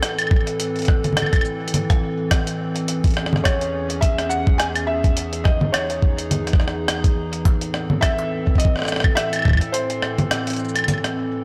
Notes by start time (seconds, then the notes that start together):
Already playing: A2 E3 C4 A4
0.03 cross-stick, closed hi-hat
0.19 closed hi-hat, high woodblock
0.22 high woodblock
0.27 high woodblock
0.31 kick, high woodblock
0.36 high woodblock
0.41 high woodblock
0.47 closed hi-hat
0.60 closed hi-hat
0.76 closed hi-hat
0.79 closed hi-hat
0.82 closed hi-hat
0.85 kick, cross-stick, closed hi-hat, high woodblock
1.04 closed hi-hat, low conga
1.13 low conga
1.17 cross-stick, closed hi-hat, high woodblock
1.22 low conga, high woodblock
1.26 high woodblock
1.33 kick, closed hi-hat, high woodblock
1.36 high woodblock
1.41 high woodblock
1.45 shaker
1.68 closed hi-hat
1.74 closed hi-hat, low conga
1.90 kick, cross-stick, closed hi-hat
2.31 kick, cross-stick, closed hi-hat
2.47 closed hi-hat
2.76 closed hi-hat
2.88 E2 C#4 G#4, closed hi-hat
3.04 kick, closed hi-hat
3.07 closed hi-hat
3.11 closed hi-hat
3.14 cross-stick, closed hi-hat
3.26 cross-stick
3.33 cross-stick, low conga
3.44 C#5, kick, cross-stick, closed hi-hat, high woodblock
3.61 closed hi-hat
3.90 closed hi-hat
4.01 E5, kick, closed hi-hat
4.18 cross-stick, closed hi-hat
4.29 F#5, shaker
4.47 kick
4.58 G#5, cross-stick, closed hi-hat
4.76 closed hi-hat, high woodblock
4.87 E5
5.04 kick, closed hi-hat
5.17 D#4, closed hi-hat
5.33 closed hi-hat
5.44 D#5, kick, cross-stick
5.61 low conga
5.72 C#5, cross-stick, closed hi-hat, high woodblock
5.90 closed hi-hat
6.02 kick
6.18 closed hi-hat
6.31 closed hi-hat, low conga
6.47 cross-stick, closed hi-hat
6.53 kick, cross-stick
6.60 cross-stick
6.68 cross-stick
6.88 cross-stick, closed hi-hat
7.04 kick, closed hi-hat
7.33 closed hi-hat
7.45 A2 E3 C4 A4, kick, closed hi-hat
7.61 closed hi-hat
7.74 cross-stick
7.90 low conga
8.01 E5, kick, cross-stick, closed hi-hat, high woodblock
8.19 closed hi-hat
8.47 kick
8.55 D#5, kick
8.60 closed hi-hat
8.65 kick
8.76 cross-stick
8.79 cross-stick
8.82 cross-stick
8.85 cross-stick
8.88 cross-stick, shaker
8.92 cross-stick
8.96 cross-stick
9.00 kick, cross-stick
9.04 high woodblock
9.15 E5, cross-stick, closed hi-hat
9.33 closed hi-hat, high woodblock
9.36 high woodblock
9.39 high woodblock
9.42 kick, high woodblock
9.45 kick, high woodblock
9.49 kick, high woodblock
9.53 kick, high woodblock
9.55 kick, high woodblock
9.59 kick, closed hi-hat
9.72 C5, closed hi-hat
9.90 closed hi-hat
10.02 cross-stick, high woodblock
10.18 closed hi-hat, low conga
10.31 cross-stick, closed hi-hat
10.47 closed hi-hat
10.50 closed hi-hat
10.53 closed hi-hat
10.56 closed hi-hat, shaker
10.65 shaker
10.69 shaker
10.76 closed hi-hat, high woodblock
10.79 high woodblock
10.84 high woodblock
10.88 closed hi-hat, low conga, high woodblock
10.94 high woodblock
10.98 high woodblock
11.04 cross-stick, closed hi-hat